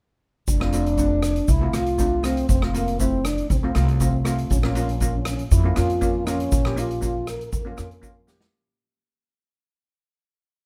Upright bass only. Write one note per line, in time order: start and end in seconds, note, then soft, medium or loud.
0.48 1.39 F1 medium
1.48 1.71 C2 medium
1.74 2.42 C2 medium
2.49 3.40 F1 medium
3.50 3.73 C2 medium
3.76 4.44 C2 medium
4.51 5.42 A#1 medium
5.51 5.74 F2 medium
5.78 6.45 F2 medium
6.52 7.43 A#1 medium
7.53 7.75 F2 medium
7.79 8.46 F2 medium